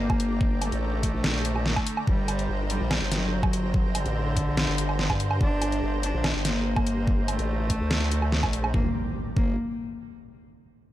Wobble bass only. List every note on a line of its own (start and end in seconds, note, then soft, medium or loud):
0.10 0.71 G1 loud
0.72 1.12 A1 medium
1.14 1.75 A#1 loud
2.07 2.47 G1 loud
2.49 2.79 G1 medium
2.81 3.00 A#1 loud
3.01 3.41 G1 loud
3.43 4.04 G1 loud
4.06 4.46 A1 medium
4.47 4.66 A#1 medium
4.68 5.08 G1 loud
5.10 5.39 G2 loud
5.41 5.81 G1 loud
5.82 6.12 G1 loud
6.14 6.33 A#1 loud
6.35 6.75 G1 medium
6.76 7.37 G1 loud
7.39 7.79 A1 medium
7.81 8.41 D2 loud
8.43 8.72 A#1 loud
8.74 8.86 G1 medium
9.37 9.56 G1 loud